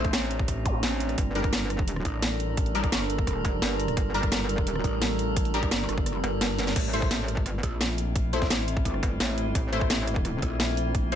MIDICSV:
0, 0, Header, 1, 7, 480
1, 0, Start_track
1, 0, Tempo, 348837
1, 1622, Time_signature, 4, 2, 24, 8
1, 15347, End_track
2, 0, Start_track
2, 0, Title_t, "Synth stab"
2, 0, Program_c, 0, 62
2, 1863, Note_on_c, 0, 55, 90
2, 1863, Note_on_c, 0, 62, 82
2, 1863, Note_on_c, 0, 70, 104
2, 1927, Note_off_c, 0, 55, 0
2, 1927, Note_off_c, 0, 62, 0
2, 1927, Note_off_c, 0, 70, 0
2, 3783, Note_on_c, 0, 55, 94
2, 3783, Note_on_c, 0, 62, 88
2, 3783, Note_on_c, 0, 70, 98
2, 3846, Note_off_c, 0, 62, 0
2, 3847, Note_off_c, 0, 55, 0
2, 3847, Note_off_c, 0, 70, 0
2, 5703, Note_on_c, 0, 55, 92
2, 5703, Note_on_c, 0, 62, 86
2, 5703, Note_on_c, 0, 70, 109
2, 5767, Note_off_c, 0, 55, 0
2, 5767, Note_off_c, 0, 62, 0
2, 5767, Note_off_c, 0, 70, 0
2, 7623, Note_on_c, 0, 62, 86
2, 7623, Note_on_c, 0, 70, 101
2, 7624, Note_on_c, 0, 55, 98
2, 7687, Note_off_c, 0, 55, 0
2, 7687, Note_off_c, 0, 62, 0
2, 7687, Note_off_c, 0, 70, 0
2, 9543, Note_on_c, 0, 57, 92
2, 9543, Note_on_c, 0, 64, 85
2, 9543, Note_on_c, 0, 72, 102
2, 9607, Note_off_c, 0, 57, 0
2, 9607, Note_off_c, 0, 64, 0
2, 9607, Note_off_c, 0, 72, 0
2, 11462, Note_on_c, 0, 72, 106
2, 11463, Note_on_c, 0, 57, 92
2, 11463, Note_on_c, 0, 64, 85
2, 11526, Note_off_c, 0, 72, 0
2, 11527, Note_off_c, 0, 57, 0
2, 11527, Note_off_c, 0, 64, 0
2, 13383, Note_on_c, 0, 57, 91
2, 13383, Note_on_c, 0, 64, 84
2, 13383, Note_on_c, 0, 72, 100
2, 13447, Note_off_c, 0, 57, 0
2, 13447, Note_off_c, 0, 64, 0
2, 13447, Note_off_c, 0, 72, 0
2, 15303, Note_on_c, 0, 57, 96
2, 15303, Note_on_c, 0, 64, 84
2, 15303, Note_on_c, 0, 72, 104
2, 15347, Note_off_c, 0, 57, 0
2, 15347, Note_off_c, 0, 64, 0
2, 15347, Note_off_c, 0, 72, 0
2, 15347, End_track
3, 0, Start_track
3, 0, Title_t, "Synth drone"
3, 0, Program_c, 1, 95
3, 0, Note_on_c, 1, 57, 88
3, 0, Note_on_c, 1, 60, 79
3, 0, Note_on_c, 1, 62, 97
3, 1567, Note_off_c, 1, 57, 0
3, 1567, Note_off_c, 1, 60, 0
3, 1622, Note_on_c, 1, 69, 81
3, 1622, Note_on_c, 1, 70, 94
3, 1623, Note_on_c, 1, 55, 86
3, 9247, Note_off_c, 1, 62, 0
3, 9247, Note_off_c, 1, 69, 0
3, 9247, Note_off_c, 1, 70, 0
3, 9248, Note_off_c, 1, 55, 0
3, 9303, Note_on_c, 1, 57, 88
3, 9303, Note_on_c, 1, 60, 84
3, 9303, Note_on_c, 1, 64, 98
3, 15347, Note_off_c, 1, 57, 0
3, 15347, Note_off_c, 1, 60, 0
3, 15347, Note_off_c, 1, 64, 0
3, 15347, End_track
4, 0, Start_track
4, 0, Title_t, "Wobble bass"
4, 0, Program_c, 2, 39
4, 0, Note_on_c, 2, 34, 94
4, 163, Note_off_c, 2, 34, 0
4, 2823, Note_on_c, 2, 33, 93
4, 4003, Note_off_c, 2, 33, 0
4, 4022, Note_on_c, 2, 31, 100
4, 4723, Note_off_c, 2, 31, 0
4, 6663, Note_on_c, 2, 33, 91
4, 7844, Note_off_c, 2, 33, 0
4, 7863, Note_on_c, 2, 31, 105
4, 8083, Note_off_c, 2, 31, 0
4, 8102, Note_on_c, 2, 31, 99
4, 8563, Note_off_c, 2, 31, 0
4, 10503, Note_on_c, 2, 34, 97
4, 11683, Note_off_c, 2, 34, 0
4, 11702, Note_on_c, 2, 33, 101
4, 12403, Note_off_c, 2, 33, 0
4, 14343, Note_on_c, 2, 34, 97
4, 15347, Note_off_c, 2, 34, 0
4, 15347, End_track
5, 0, Start_track
5, 0, Title_t, "Wobble bass"
5, 0, Program_c, 3, 39
5, 182, Note_on_c, 3, 33, 96
5, 1603, Note_off_c, 3, 33, 0
5, 1623, Note_on_c, 3, 31, 100
5, 2803, Note_off_c, 3, 31, 0
5, 4743, Note_on_c, 3, 29, 105
5, 4964, Note_off_c, 3, 29, 0
5, 4982, Note_on_c, 3, 31, 104
5, 5443, Note_off_c, 3, 31, 0
5, 5462, Note_on_c, 3, 31, 98
5, 6643, Note_off_c, 3, 31, 0
5, 8582, Note_on_c, 3, 31, 101
5, 9283, Note_off_c, 3, 31, 0
5, 9302, Note_on_c, 3, 33, 98
5, 10142, Note_off_c, 3, 33, 0
5, 10142, Note_on_c, 3, 32, 98
5, 10483, Note_off_c, 3, 32, 0
5, 12423, Note_on_c, 3, 31, 99
5, 12644, Note_off_c, 3, 31, 0
5, 12663, Note_on_c, 3, 33, 100
5, 13123, Note_off_c, 3, 33, 0
5, 13143, Note_on_c, 3, 33, 100
5, 14323, Note_off_c, 3, 33, 0
5, 15347, End_track
6, 0, Start_track
6, 0, Title_t, "Zap"
6, 0, Program_c, 4, 103
6, 902, Note_on_c, 4, 60, 62
6, 1022, Note_off_c, 4, 60, 0
6, 15347, End_track
7, 0, Start_track
7, 0, Title_t, "Drums"
7, 63, Note_on_c, 9, 36, 108
7, 63, Note_on_c, 9, 42, 37
7, 182, Note_off_c, 9, 42, 0
7, 182, Note_on_c, 9, 38, 127
7, 182, Note_on_c, 9, 42, 92
7, 200, Note_off_c, 9, 36, 0
7, 320, Note_off_c, 9, 38, 0
7, 320, Note_off_c, 9, 42, 0
7, 422, Note_on_c, 9, 42, 57
7, 543, Note_on_c, 9, 36, 113
7, 560, Note_off_c, 9, 42, 0
7, 662, Note_on_c, 9, 37, 35
7, 662, Note_on_c, 9, 42, 95
7, 663, Note_off_c, 9, 36, 0
7, 663, Note_on_c, 9, 36, 65
7, 800, Note_off_c, 9, 36, 0
7, 800, Note_off_c, 9, 37, 0
7, 800, Note_off_c, 9, 42, 0
7, 902, Note_on_c, 9, 42, 62
7, 903, Note_on_c, 9, 36, 107
7, 1039, Note_off_c, 9, 42, 0
7, 1040, Note_off_c, 9, 36, 0
7, 1141, Note_on_c, 9, 38, 124
7, 1141, Note_on_c, 9, 42, 86
7, 1279, Note_off_c, 9, 38, 0
7, 1279, Note_off_c, 9, 42, 0
7, 1382, Note_on_c, 9, 42, 63
7, 1502, Note_off_c, 9, 42, 0
7, 1502, Note_on_c, 9, 37, 33
7, 1502, Note_on_c, 9, 42, 36
7, 1622, Note_off_c, 9, 42, 0
7, 1622, Note_on_c, 9, 42, 93
7, 1623, Note_on_c, 9, 36, 119
7, 1639, Note_off_c, 9, 37, 0
7, 1759, Note_off_c, 9, 42, 0
7, 1760, Note_off_c, 9, 36, 0
7, 1862, Note_on_c, 9, 42, 62
7, 1982, Note_off_c, 9, 42, 0
7, 1982, Note_on_c, 9, 42, 35
7, 1983, Note_on_c, 9, 36, 101
7, 2101, Note_off_c, 9, 42, 0
7, 2101, Note_on_c, 9, 38, 126
7, 2101, Note_on_c, 9, 42, 95
7, 2120, Note_off_c, 9, 36, 0
7, 2239, Note_off_c, 9, 38, 0
7, 2239, Note_off_c, 9, 42, 0
7, 2341, Note_on_c, 9, 37, 51
7, 2341, Note_on_c, 9, 42, 61
7, 2463, Note_on_c, 9, 36, 110
7, 2479, Note_off_c, 9, 37, 0
7, 2479, Note_off_c, 9, 42, 0
7, 2581, Note_on_c, 9, 42, 89
7, 2600, Note_off_c, 9, 36, 0
7, 2702, Note_on_c, 9, 37, 54
7, 2719, Note_off_c, 9, 42, 0
7, 2821, Note_on_c, 9, 42, 63
7, 2823, Note_on_c, 9, 36, 66
7, 2839, Note_off_c, 9, 37, 0
7, 2959, Note_off_c, 9, 42, 0
7, 2960, Note_off_c, 9, 36, 0
7, 3061, Note_on_c, 9, 38, 122
7, 3061, Note_on_c, 9, 42, 94
7, 3199, Note_off_c, 9, 38, 0
7, 3199, Note_off_c, 9, 42, 0
7, 3301, Note_on_c, 9, 42, 63
7, 3439, Note_off_c, 9, 42, 0
7, 3542, Note_on_c, 9, 42, 98
7, 3543, Note_on_c, 9, 36, 124
7, 3662, Note_off_c, 9, 42, 0
7, 3662, Note_on_c, 9, 42, 36
7, 3680, Note_off_c, 9, 36, 0
7, 3782, Note_off_c, 9, 42, 0
7, 3782, Note_on_c, 9, 42, 67
7, 3902, Note_off_c, 9, 42, 0
7, 3902, Note_on_c, 9, 42, 36
7, 3903, Note_on_c, 9, 36, 103
7, 4022, Note_off_c, 9, 42, 0
7, 4022, Note_on_c, 9, 38, 119
7, 4022, Note_on_c, 9, 42, 94
7, 4040, Note_off_c, 9, 36, 0
7, 4160, Note_off_c, 9, 38, 0
7, 4160, Note_off_c, 9, 42, 0
7, 4262, Note_on_c, 9, 42, 61
7, 4383, Note_on_c, 9, 36, 106
7, 4400, Note_off_c, 9, 42, 0
7, 4502, Note_on_c, 9, 37, 37
7, 4502, Note_on_c, 9, 42, 96
7, 4503, Note_off_c, 9, 36, 0
7, 4503, Note_on_c, 9, 36, 60
7, 4640, Note_off_c, 9, 36, 0
7, 4640, Note_off_c, 9, 37, 0
7, 4640, Note_off_c, 9, 42, 0
7, 4743, Note_on_c, 9, 36, 104
7, 4743, Note_on_c, 9, 42, 65
7, 4880, Note_off_c, 9, 36, 0
7, 4880, Note_off_c, 9, 42, 0
7, 4983, Note_on_c, 9, 38, 117
7, 4983, Note_on_c, 9, 42, 91
7, 5120, Note_off_c, 9, 38, 0
7, 5120, Note_off_c, 9, 42, 0
7, 5223, Note_on_c, 9, 42, 65
7, 5342, Note_off_c, 9, 42, 0
7, 5342, Note_on_c, 9, 37, 32
7, 5342, Note_on_c, 9, 42, 37
7, 5462, Note_off_c, 9, 42, 0
7, 5462, Note_on_c, 9, 42, 98
7, 5463, Note_on_c, 9, 36, 117
7, 5480, Note_off_c, 9, 37, 0
7, 5600, Note_off_c, 9, 36, 0
7, 5600, Note_off_c, 9, 42, 0
7, 5702, Note_on_c, 9, 42, 69
7, 5822, Note_off_c, 9, 42, 0
7, 5822, Note_on_c, 9, 42, 37
7, 5823, Note_on_c, 9, 36, 96
7, 5942, Note_off_c, 9, 42, 0
7, 5942, Note_on_c, 9, 38, 120
7, 5942, Note_on_c, 9, 42, 98
7, 5960, Note_off_c, 9, 36, 0
7, 6080, Note_off_c, 9, 38, 0
7, 6080, Note_off_c, 9, 42, 0
7, 6183, Note_on_c, 9, 42, 67
7, 6303, Note_on_c, 9, 36, 104
7, 6320, Note_off_c, 9, 42, 0
7, 6423, Note_on_c, 9, 42, 102
7, 6441, Note_off_c, 9, 36, 0
7, 6542, Note_on_c, 9, 37, 52
7, 6560, Note_off_c, 9, 42, 0
7, 6662, Note_on_c, 9, 42, 67
7, 6663, Note_on_c, 9, 36, 59
7, 6680, Note_off_c, 9, 37, 0
7, 6800, Note_off_c, 9, 42, 0
7, 6801, Note_off_c, 9, 36, 0
7, 6902, Note_on_c, 9, 38, 120
7, 6902, Note_on_c, 9, 42, 99
7, 7040, Note_off_c, 9, 38, 0
7, 7040, Note_off_c, 9, 42, 0
7, 7142, Note_on_c, 9, 42, 66
7, 7280, Note_off_c, 9, 42, 0
7, 7382, Note_on_c, 9, 42, 102
7, 7383, Note_on_c, 9, 36, 122
7, 7503, Note_off_c, 9, 42, 0
7, 7503, Note_on_c, 9, 42, 37
7, 7521, Note_off_c, 9, 36, 0
7, 7622, Note_off_c, 9, 42, 0
7, 7622, Note_on_c, 9, 42, 70
7, 7743, Note_off_c, 9, 42, 0
7, 7743, Note_on_c, 9, 36, 100
7, 7743, Note_on_c, 9, 42, 40
7, 7862, Note_off_c, 9, 42, 0
7, 7862, Note_on_c, 9, 38, 122
7, 7862, Note_on_c, 9, 42, 101
7, 7880, Note_off_c, 9, 36, 0
7, 8000, Note_off_c, 9, 38, 0
7, 8000, Note_off_c, 9, 42, 0
7, 8102, Note_on_c, 9, 37, 53
7, 8102, Note_on_c, 9, 42, 68
7, 8223, Note_on_c, 9, 36, 104
7, 8240, Note_off_c, 9, 37, 0
7, 8240, Note_off_c, 9, 42, 0
7, 8342, Note_on_c, 9, 37, 39
7, 8342, Note_on_c, 9, 42, 100
7, 8360, Note_off_c, 9, 36, 0
7, 8480, Note_off_c, 9, 37, 0
7, 8480, Note_off_c, 9, 42, 0
7, 8582, Note_on_c, 9, 42, 73
7, 8720, Note_off_c, 9, 42, 0
7, 8822, Note_on_c, 9, 38, 116
7, 8822, Note_on_c, 9, 42, 101
7, 8960, Note_off_c, 9, 38, 0
7, 8960, Note_off_c, 9, 42, 0
7, 9062, Note_on_c, 9, 38, 62
7, 9062, Note_on_c, 9, 42, 69
7, 9182, Note_off_c, 9, 38, 0
7, 9182, Note_off_c, 9, 42, 0
7, 9182, Note_on_c, 9, 38, 74
7, 9182, Note_on_c, 9, 42, 38
7, 9302, Note_off_c, 9, 42, 0
7, 9302, Note_on_c, 9, 36, 127
7, 9302, Note_on_c, 9, 42, 96
7, 9302, Note_on_c, 9, 49, 108
7, 9320, Note_off_c, 9, 38, 0
7, 9440, Note_off_c, 9, 36, 0
7, 9440, Note_off_c, 9, 42, 0
7, 9440, Note_off_c, 9, 49, 0
7, 9542, Note_on_c, 9, 42, 69
7, 9663, Note_on_c, 9, 36, 107
7, 9680, Note_off_c, 9, 42, 0
7, 9782, Note_on_c, 9, 38, 126
7, 9782, Note_on_c, 9, 42, 96
7, 9800, Note_off_c, 9, 36, 0
7, 9920, Note_off_c, 9, 38, 0
7, 9920, Note_off_c, 9, 42, 0
7, 10022, Note_on_c, 9, 37, 32
7, 10022, Note_on_c, 9, 42, 63
7, 10143, Note_on_c, 9, 36, 110
7, 10160, Note_off_c, 9, 37, 0
7, 10160, Note_off_c, 9, 42, 0
7, 10262, Note_on_c, 9, 37, 39
7, 10262, Note_on_c, 9, 42, 101
7, 10280, Note_off_c, 9, 36, 0
7, 10400, Note_off_c, 9, 37, 0
7, 10400, Note_off_c, 9, 42, 0
7, 10502, Note_on_c, 9, 42, 72
7, 10503, Note_on_c, 9, 36, 64
7, 10640, Note_off_c, 9, 36, 0
7, 10640, Note_off_c, 9, 42, 0
7, 10742, Note_on_c, 9, 38, 121
7, 10742, Note_on_c, 9, 42, 96
7, 10880, Note_off_c, 9, 38, 0
7, 10880, Note_off_c, 9, 42, 0
7, 10982, Note_on_c, 9, 42, 66
7, 11120, Note_off_c, 9, 42, 0
7, 11222, Note_on_c, 9, 42, 96
7, 11223, Note_on_c, 9, 36, 127
7, 11360, Note_off_c, 9, 36, 0
7, 11360, Note_off_c, 9, 42, 0
7, 11463, Note_on_c, 9, 42, 65
7, 11583, Note_on_c, 9, 36, 112
7, 11583, Note_on_c, 9, 38, 38
7, 11600, Note_off_c, 9, 42, 0
7, 11703, Note_off_c, 9, 38, 0
7, 11703, Note_on_c, 9, 38, 127
7, 11703, Note_on_c, 9, 42, 99
7, 11720, Note_off_c, 9, 36, 0
7, 11840, Note_off_c, 9, 38, 0
7, 11840, Note_off_c, 9, 42, 0
7, 11943, Note_on_c, 9, 42, 64
7, 12063, Note_on_c, 9, 36, 114
7, 12080, Note_off_c, 9, 42, 0
7, 12183, Note_off_c, 9, 36, 0
7, 12183, Note_on_c, 9, 36, 64
7, 12183, Note_on_c, 9, 42, 95
7, 12303, Note_on_c, 9, 37, 37
7, 12320, Note_off_c, 9, 36, 0
7, 12321, Note_off_c, 9, 42, 0
7, 12423, Note_on_c, 9, 36, 109
7, 12423, Note_on_c, 9, 42, 66
7, 12441, Note_off_c, 9, 37, 0
7, 12560, Note_off_c, 9, 36, 0
7, 12561, Note_off_c, 9, 42, 0
7, 12663, Note_on_c, 9, 38, 126
7, 12663, Note_on_c, 9, 42, 93
7, 12783, Note_on_c, 9, 37, 36
7, 12800, Note_off_c, 9, 38, 0
7, 12800, Note_off_c, 9, 42, 0
7, 12903, Note_on_c, 9, 42, 67
7, 12921, Note_off_c, 9, 37, 0
7, 13041, Note_off_c, 9, 42, 0
7, 13143, Note_on_c, 9, 36, 125
7, 13143, Note_on_c, 9, 42, 94
7, 13280, Note_off_c, 9, 36, 0
7, 13280, Note_off_c, 9, 42, 0
7, 13383, Note_on_c, 9, 42, 62
7, 13503, Note_on_c, 9, 36, 114
7, 13521, Note_off_c, 9, 42, 0
7, 13623, Note_on_c, 9, 38, 127
7, 13623, Note_on_c, 9, 42, 94
7, 13640, Note_off_c, 9, 36, 0
7, 13761, Note_off_c, 9, 38, 0
7, 13761, Note_off_c, 9, 42, 0
7, 13863, Note_on_c, 9, 37, 34
7, 13863, Note_on_c, 9, 42, 66
7, 13983, Note_on_c, 9, 36, 111
7, 14001, Note_off_c, 9, 37, 0
7, 14001, Note_off_c, 9, 42, 0
7, 14103, Note_on_c, 9, 37, 40
7, 14103, Note_on_c, 9, 42, 92
7, 14120, Note_off_c, 9, 36, 0
7, 14240, Note_off_c, 9, 37, 0
7, 14240, Note_off_c, 9, 42, 0
7, 14343, Note_on_c, 9, 36, 68
7, 14343, Note_on_c, 9, 42, 64
7, 14480, Note_off_c, 9, 36, 0
7, 14480, Note_off_c, 9, 42, 0
7, 14583, Note_on_c, 9, 38, 127
7, 14583, Note_on_c, 9, 42, 91
7, 14720, Note_off_c, 9, 38, 0
7, 14720, Note_off_c, 9, 42, 0
7, 14823, Note_on_c, 9, 42, 66
7, 14960, Note_off_c, 9, 42, 0
7, 15063, Note_on_c, 9, 36, 127
7, 15063, Note_on_c, 9, 42, 89
7, 15200, Note_off_c, 9, 36, 0
7, 15200, Note_off_c, 9, 42, 0
7, 15302, Note_on_c, 9, 42, 62
7, 15347, Note_off_c, 9, 42, 0
7, 15347, End_track
0, 0, End_of_file